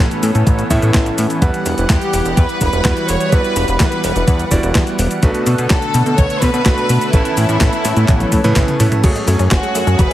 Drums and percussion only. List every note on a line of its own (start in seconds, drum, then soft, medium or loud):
0.11 closed hi-hat soft
0.11 cabasa soft
0.23 open hi-hat loud
0.23 cabasa medium
0.35 closed hi-hat soft
0.35 cabasa soft
0.47 kick loud
0.47 closed hi-hat medium
0.47 cabasa soft
0.59 closed hi-hat soft
0.59 cabasa soft
0.70 kick medium
0.70 open hi-hat loud
0.70 cabasa medium
0.82 closed hi-hat soft
0.82 cabasa soft
0.94 kick loud
0.94 snare loud
0.94 clap medium
0.94 closed hi-hat medium
0.94 cabasa soft
1.06 closed hi-hat soft
1.06 cabasa soft
1.18 open hi-hat loud
1.18 cabasa medium
1.30 closed hi-hat soft
1.30 cabasa soft
1.42 kick loud
1.42 closed hi-hat medium
1.42 cabasa soft
1.54 closed hi-hat soft
1.54 cabasa soft
1.66 open hi-hat loud
1.66 cabasa medium
1.78 closed hi-hat soft
1.78 cabasa soft
1.90 kick loud
1.90 snare loud
1.90 clap medium
1.90 closed hi-hat medium
1.90 cabasa soft
2.02 closed hi-hat soft
2.02 cabasa soft
2.13 open hi-hat loud
2.13 cabasa medium
2.25 closed hi-hat soft
2.25 cabasa soft
2.37 kick loud
2.37 closed hi-hat medium
2.37 cabasa soft
2.49 closed hi-hat soft
2.49 cabasa soft
2.61 kick medium
2.61 open hi-hat loud
2.61 cabasa medium
2.73 closed hi-hat soft
2.73 cabasa soft
2.85 kick loud
2.85 snare loud
2.85 clap medium
2.85 closed hi-hat medium
2.85 cabasa soft
2.97 closed hi-hat soft
2.97 cabasa soft
3.09 open hi-hat loud
3.09 cabasa medium
3.21 closed hi-hat soft
3.21 cabasa soft
3.32 kick loud
3.32 closed hi-hat medium
3.32 cabasa soft
3.44 closed hi-hat soft
3.44 cabasa soft
3.56 open hi-hat loud
3.56 cabasa medium
3.68 closed hi-hat soft
3.68 cabasa soft
3.80 kick loud
3.80 snare loud
3.80 clap medium
3.80 closed hi-hat medium
3.80 cabasa soft
3.92 closed hi-hat soft
3.92 cabasa soft
4.04 open hi-hat loud
4.04 cabasa medium
4.16 closed hi-hat soft
4.16 cabasa soft
4.28 kick loud
4.28 closed hi-hat loud
4.28 cabasa soft
4.39 closed hi-hat soft
4.39 cabasa soft
4.51 kick medium
4.51 open hi-hat loud
4.51 cabasa medium
4.63 closed hi-hat soft
4.63 cabasa soft
4.75 kick loud
4.75 snare loud
4.75 clap medium
4.75 closed hi-hat medium
4.75 cabasa soft
4.87 closed hi-hat soft
4.87 cabasa soft
4.99 open hi-hat loud
4.99 cabasa medium
5.11 closed hi-hat soft
5.11 cabasa soft
5.23 kick loud
5.23 closed hi-hat loud
5.23 cabasa soft
5.34 closed hi-hat soft
5.34 cabasa soft
5.46 open hi-hat loud
5.46 cabasa medium
5.58 closed hi-hat soft
5.58 cabasa soft
5.70 kick loud
5.70 snare loud
5.70 clap medium
5.70 closed hi-hat loud
5.70 cabasa soft
5.82 closed hi-hat soft
5.82 cabasa soft
5.94 open hi-hat loud
5.94 cabasa medium
6.06 closed hi-hat soft
6.06 cabasa soft
6.18 kick loud
6.18 closed hi-hat loud
6.18 cabasa soft
6.30 closed hi-hat soft
6.30 cabasa soft
6.42 kick medium
6.42 open hi-hat loud
6.42 cabasa medium
6.54 closed hi-hat soft
6.54 cabasa soft
6.66 kick loud
6.66 snare loud
6.66 clap medium
6.66 closed hi-hat loud
6.66 cabasa soft
6.78 closed hi-hat soft
6.78 cabasa soft
6.89 open hi-hat loud
6.89 cabasa medium
7.01 closed hi-hat soft
7.01 cabasa soft
7.13 kick loud
7.13 closed hi-hat loud
7.13 cabasa soft
7.25 closed hi-hat soft
7.25 cabasa soft
7.37 open hi-hat loud
7.37 cabasa medium
7.49 closed hi-hat soft
7.49 cabasa soft
7.61 kick loud
7.61 snare loud
7.61 clap medium
7.61 closed hi-hat loud
7.61 cabasa soft
7.73 closed hi-hat soft
7.73 cabasa soft
7.85 snare medium
7.85 open hi-hat loud
7.85 cabasa medium
7.97 closed hi-hat soft
7.97 cabasa soft
8.08 kick loud
8.08 clap medium
8.08 closed hi-hat loud
8.08 high tom medium
8.08 cabasa soft
8.20 closed hi-hat soft
8.20 high tom medium
8.20 cabasa soft
8.32 kick medium
8.32 open hi-hat loud
8.32 high tom medium
8.32 cabasa medium
8.44 closed hi-hat soft
8.44 mid tom medium
8.44 cabasa soft
8.56 kick loud
8.56 snare loud
8.56 clap medium
8.56 closed hi-hat loud
8.56 mid tom medium
8.56 cabasa soft
8.68 closed hi-hat soft
8.68 mid tom medium
8.68 cabasa soft
8.80 mid tom loud
8.80 open hi-hat loud
8.80 cabasa medium
8.92 closed hi-hat soft
8.92 mid tom medium
8.92 cabasa soft
9.04 kick loud
9.04 closed hi-hat medium
9.04 crash loud
9.04 cabasa soft
9.16 closed hi-hat soft
9.16 cabasa soft
9.28 open hi-hat loud
9.28 cabasa medium
9.39 closed hi-hat soft
9.39 cabasa soft
9.51 kick loud
9.51 snare loud
9.51 clap loud
9.51 closed hi-hat loud
9.51 cabasa soft
9.63 closed hi-hat soft
9.63 cabasa soft
9.75 open hi-hat loud
9.75 cabasa medium
9.87 closed hi-hat soft
9.87 cabasa soft
9.99 kick loud
9.99 closed hi-hat loud
9.99 cabasa soft